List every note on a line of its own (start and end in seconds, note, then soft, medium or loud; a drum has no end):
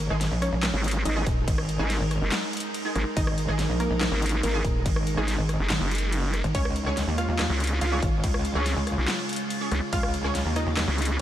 0.00 6.51 G#3 medium
0.00 0.34 A#3 medium
0.00 6.51 D#4 medium
0.00 0.34 A#4 loud
0.00 6.51 A#4 loud
0.10 0.30 G#1 loud
0.10 0.16 G#3 medium
0.10 0.16 D#4 medium
0.10 0.16 G#4 loud
0.10 cross-stick medium
0.21 snare medium
0.21 closed hi-hat medium
0.21 crash soft
0.32 0.51 A#1 loud
0.42 0.97 C#4 medium
0.42 0.97 C#5 loud
0.42 cross-stick medium
0.42 closed hi-hat medium
0.53 0.72 A#1 loud
0.63 cross-stick medium
0.63 snare loud
0.63 clap medium
0.63 closed hi-hat medium
0.63 crash medium
0.74 1.04 G#1 medium
0.84 closed hi-hat soft
0.88 closed hi-hat medium
0.91 closed hi-hat medium
1.05 1.25 G#1 loud
1.05 3.08 D#4 medium
1.05 3.08 D#5 loud
1.05 closed hi-hat medium
1.05 crash soft
1.16 1.22 G#3 medium
1.16 1.22 D#4 medium
1.16 1.22 G#4 loud
1.27 1.46 D#1 loud
1.27 kick loud
1.27 closed hi-hat medium
1.48 1.78 G#1 loud
1.48 kick loud
1.48 closed hi-hat medium
1.48 crash medium
1.58 cross-stick medium
1.69 closed hi-hat medium
1.79 1.99 G#1 loud
1.79 1.89 G#3 medium
1.79 1.89 D#4 medium
1.79 1.89 G#4 loud
1.79 cross-stick medium
1.90 snare medium
1.90 closed hi-hat medium
1.90 crash soft
2.01 2.20 G#1 medium
2.11 cross-stick medium
2.11 closed hi-hat medium
2.22 2.30 F#1 medium
2.32 snare loud
2.32 clap medium
2.32 closed hi-hat medium
2.32 crash medium
2.53 closed hi-hat medium
2.57 closed hi-hat medium
2.60 closed hi-hat medium
2.74 closed hi-hat medium
2.74 crash soft
2.85 2.91 G#3 medium
2.85 2.91 D#4 medium
2.85 2.91 G#4 medium
2.96 3.04 G#1 loud
2.96 cross-stick medium
2.96 closed hi-hat medium
3.17 3.47 G#1 medium
3.17 3.72 D#4 medium
3.17 3.72 D#5 loud
3.17 kick loud
3.17 closed hi-hat medium
3.17 crash medium
3.27 cross-stick medium
3.38 closed hi-hat medium
3.48 3.68 G#1 medium
3.48 3.54 G#3 medium
3.48 3.54 D#4 medium
3.48 3.54 G#4 loud
3.48 cross-stick medium
3.59 snare medium
3.59 closed hi-hat medium
3.59 crash soft
3.70 3.89 A#1 loud
3.80 4.35 A#3 medium
3.80 4.35 A#4 loud
3.80 cross-stick medium
3.80 closed hi-hat medium
3.91 4.10 A#1 loud
4.01 cross-stick medium
4.01 snare loud
4.01 clap medium
4.01 closed hi-hat medium
4.01 crash medium
4.12 4.42 G#1 medium
4.22 closed hi-hat soft
4.26 closed hi-hat medium
4.29 closed hi-hat medium
4.43 4.63 G#1 medium
4.43 6.46 A#3 medium
4.43 6.46 A#4 medium
4.43 closed hi-hat medium
4.43 crash soft
4.54 4.60 G#3 medium
4.54 4.60 D#4 medium
4.54 4.60 G#4 loud
4.65 4.84 D#1 loud
4.65 kick loud
4.65 closed hi-hat medium
4.86 5.16 G#1 loud
4.86 kick loud
4.86 closed hi-hat medium
4.86 crash medium
4.96 cross-stick medium
5.07 closed hi-hat medium
5.17 5.37 G#1 medium
5.17 5.27 G#3 medium
5.17 5.27 D#4 medium
5.17 5.27 G#4 loud
5.17 cross-stick medium
5.28 snare medium
5.28 closed hi-hat medium
5.28 crash soft
5.39 5.58 G#1 loud
5.49 cross-stick medium
5.49 closed hi-hat medium
5.60 5.68 F#1 loud
5.70 5.79 G#1 loud
5.70 snare loud
5.70 clap medium
5.70 closed hi-hat medium
5.70 crash medium
5.81 6.42 F#1 medium
5.91 closed hi-hat soft
5.95 closed hi-hat medium
5.98 closed hi-hat medium
6.12 closed hi-hat medium
6.12 crash soft
6.34 cross-stick medium
6.34 closed hi-hat medium
6.44 6.53 G#1 loud
6.44 closed hi-hat soft
6.55 6.85 C#2 loud
6.55 11.21 C#3 medium
6.55 11.21 G#3 medium
6.55 7.10 C#4 medium
6.55 11.21 F4 medium
6.55 7.10 C#5 loud
6.55 kick loud
6.55 closed hi-hat medium
6.55 crash medium
6.65 cross-stick medium
6.76 closed hi-hat soft
6.86 7.06 C#2 loud
6.86 6.92 C#4 medium
6.86 6.92 G#4 medium
6.86 6.92 C#5 loud
6.86 cross-stick medium
6.97 snare medium
6.97 closed hi-hat medium
6.97 crash soft
7.08 7.27 D#2 loud
7.18 7.73 F4 medium
7.18 7.73 F5 loud
7.18 cross-stick medium
7.18 closed hi-hat medium
7.29 7.48 D#2 medium
7.39 cross-stick medium
7.39 snare loud
7.39 clap medium
7.39 closed hi-hat medium
7.39 crash medium
7.50 7.80 C#2 loud
7.60 closed hi-hat soft
7.64 closed hi-hat medium
7.67 closed hi-hat medium
7.81 8.01 C#2 loud
7.81 9.84 F4 medium
7.81 9.84 F5 loud
7.81 closed hi-hat medium
7.81 crash soft
7.92 7.98 C#4 medium
7.92 7.98 G#4 medium
7.92 7.98 C#5 medium
8.03 8.22 G#1 loud
8.03 kick loud
8.03 closed hi-hat medium
8.24 8.54 C#2 loud
8.24 kick loud
8.24 closed hi-hat medium
8.24 crash medium
8.34 cross-stick medium
8.45 closed hi-hat medium
8.55 8.75 C#2 medium
8.55 8.65 C#4 medium
8.55 8.65 G#4 medium
8.55 8.65 C#5 loud
8.55 cross-stick medium
8.66 snare medium
8.66 closed hi-hat medium
8.66 crash soft
8.77 8.96 C#2 medium
8.87 cross-stick medium
8.87 closed hi-hat medium
8.98 9.07 B1 loud
9.08 snare loud
9.08 clap medium
9.08 closed hi-hat medium
9.08 crash medium
9.29 closed hi-hat medium
9.33 closed hi-hat medium
9.36 closed hi-hat medium
9.50 closed hi-hat medium
9.50 crash soft
9.61 9.67 C#4 medium
9.61 9.67 G#4 medium
9.61 9.67 C#5 medium
9.72 9.80 C#2 loud
9.72 cross-stick medium
9.72 closed hi-hat medium
9.93 10.23 C#2 loud
9.93 10.48 F4 medium
9.93 10.48 F5 loud
9.93 kick loud
9.93 closed hi-hat medium
9.93 crash medium
10.03 cross-stick medium
10.14 closed hi-hat medium
10.24 10.44 C#2 loud
10.24 10.30 C#4 medium
10.24 10.30 G#4 medium
10.24 10.30 C#5 loud
10.24 cross-stick medium
10.35 snare medium
10.35 closed hi-hat medium
10.35 crash soft
10.46 10.65 D#2 medium
10.56 11.11 D#4 medium
10.56 11.11 D#5 loud
10.56 cross-stick medium
10.56 closed hi-hat medium
10.67 10.86 D#2 loud
10.77 cross-stick medium
10.77 snare loud
10.77 clap medium
10.77 closed hi-hat medium
10.77 crash medium
10.88 11.18 C#2 medium
10.98 closed hi-hat medium
11.02 closed hi-hat medium
11.05 closed hi-hat medium